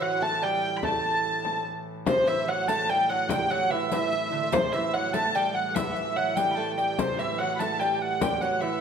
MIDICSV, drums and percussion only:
0, 0, Header, 1, 3, 480
1, 0, Start_track
1, 0, Tempo, 410116
1, 970, Time_signature, 6, 3, 24, 8
1, 10309, End_track
2, 0, Start_track
2, 0, Title_t, "Frame drum"
2, 5, Note_on_c, 9, 64, 25
2, 122, Note_off_c, 9, 64, 0
2, 242, Note_on_c, 9, 64, 59
2, 359, Note_off_c, 9, 64, 0
2, 490, Note_on_c, 9, 64, 24
2, 607, Note_off_c, 9, 64, 0
2, 968, Note_on_c, 9, 64, 80
2, 1085, Note_off_c, 9, 64, 0
2, 1209, Note_on_c, 9, 64, 23
2, 1326, Note_off_c, 9, 64, 0
2, 1696, Note_on_c, 9, 64, 59
2, 1814, Note_off_c, 9, 64, 0
2, 2417, Note_on_c, 9, 64, 97
2, 2534, Note_off_c, 9, 64, 0
2, 2656, Note_on_c, 9, 64, 28
2, 2773, Note_off_c, 9, 64, 0
2, 2906, Note_on_c, 9, 64, 30
2, 3023, Note_off_c, 9, 64, 0
2, 3138, Note_on_c, 9, 64, 67
2, 3255, Note_off_c, 9, 64, 0
2, 3382, Note_on_c, 9, 64, 26
2, 3499, Note_off_c, 9, 64, 0
2, 3853, Note_on_c, 9, 64, 93
2, 3970, Note_off_c, 9, 64, 0
2, 4111, Note_on_c, 9, 64, 29
2, 4228, Note_off_c, 9, 64, 0
2, 4352, Note_on_c, 9, 64, 28
2, 4469, Note_off_c, 9, 64, 0
2, 4592, Note_on_c, 9, 64, 74
2, 4709, Note_off_c, 9, 64, 0
2, 4829, Note_on_c, 9, 64, 29
2, 4946, Note_off_c, 9, 64, 0
2, 5305, Note_on_c, 9, 64, 101
2, 5422, Note_off_c, 9, 64, 0
2, 5547, Note_on_c, 9, 64, 29
2, 5665, Note_off_c, 9, 64, 0
2, 5789, Note_on_c, 9, 64, 32
2, 5906, Note_off_c, 9, 64, 0
2, 6029, Note_on_c, 9, 64, 68
2, 6146, Note_off_c, 9, 64, 0
2, 6265, Note_on_c, 9, 64, 29
2, 6382, Note_off_c, 9, 64, 0
2, 6742, Note_on_c, 9, 64, 93
2, 6859, Note_off_c, 9, 64, 0
2, 6973, Note_on_c, 9, 64, 28
2, 7090, Note_off_c, 9, 64, 0
2, 7456, Note_on_c, 9, 64, 68
2, 7573, Note_off_c, 9, 64, 0
2, 8176, Note_on_c, 9, 64, 86
2, 8293, Note_off_c, 9, 64, 0
2, 8423, Note_on_c, 9, 64, 27
2, 8540, Note_off_c, 9, 64, 0
2, 8662, Note_on_c, 9, 64, 29
2, 8780, Note_off_c, 9, 64, 0
2, 8902, Note_on_c, 9, 64, 66
2, 9019, Note_off_c, 9, 64, 0
2, 9144, Note_on_c, 9, 64, 28
2, 9261, Note_off_c, 9, 64, 0
2, 9613, Note_on_c, 9, 64, 95
2, 9730, Note_off_c, 9, 64, 0
2, 9857, Note_on_c, 9, 64, 29
2, 9974, Note_off_c, 9, 64, 0
2, 10093, Note_on_c, 9, 64, 29
2, 10210, Note_off_c, 9, 64, 0
2, 10309, End_track
3, 0, Start_track
3, 0, Title_t, "Riq"
3, 2422, Note_on_c, 9, 54, 53
3, 2539, Note_off_c, 9, 54, 0
3, 2660, Note_on_c, 9, 54, 18
3, 2777, Note_off_c, 9, 54, 0
3, 3143, Note_on_c, 9, 54, 49
3, 3260, Note_off_c, 9, 54, 0
3, 3388, Note_on_c, 9, 54, 19
3, 3505, Note_off_c, 9, 54, 0
3, 3867, Note_on_c, 9, 54, 64
3, 3984, Note_off_c, 9, 54, 0
3, 4097, Note_on_c, 9, 54, 20
3, 4214, Note_off_c, 9, 54, 0
3, 4583, Note_on_c, 9, 54, 55
3, 4700, Note_off_c, 9, 54, 0
3, 4818, Note_on_c, 9, 54, 21
3, 4935, Note_off_c, 9, 54, 0
3, 5295, Note_on_c, 9, 54, 65
3, 5412, Note_off_c, 9, 54, 0
3, 5536, Note_on_c, 9, 54, 22
3, 5653, Note_off_c, 9, 54, 0
3, 6014, Note_on_c, 9, 54, 57
3, 6131, Note_off_c, 9, 54, 0
3, 6257, Note_on_c, 9, 54, 23
3, 6374, Note_off_c, 9, 54, 0
3, 6739, Note_on_c, 9, 54, 73
3, 6856, Note_off_c, 9, 54, 0
3, 6979, Note_on_c, 9, 54, 23
3, 7096, Note_off_c, 9, 54, 0
3, 7454, Note_on_c, 9, 54, 56
3, 7571, Note_off_c, 9, 54, 0
3, 7942, Note_on_c, 9, 54, 22
3, 8059, Note_off_c, 9, 54, 0
3, 8181, Note_on_c, 9, 54, 63
3, 8298, Note_off_c, 9, 54, 0
3, 8419, Note_on_c, 9, 54, 20
3, 8536, Note_off_c, 9, 54, 0
3, 8898, Note_on_c, 9, 54, 54
3, 9015, Note_off_c, 9, 54, 0
3, 9138, Note_on_c, 9, 54, 22
3, 9255, Note_off_c, 9, 54, 0
3, 9616, Note_on_c, 9, 54, 67
3, 9733, Note_off_c, 9, 54, 0
3, 9854, Note_on_c, 9, 54, 21
3, 9971, Note_off_c, 9, 54, 0
3, 10309, End_track
0, 0, End_of_file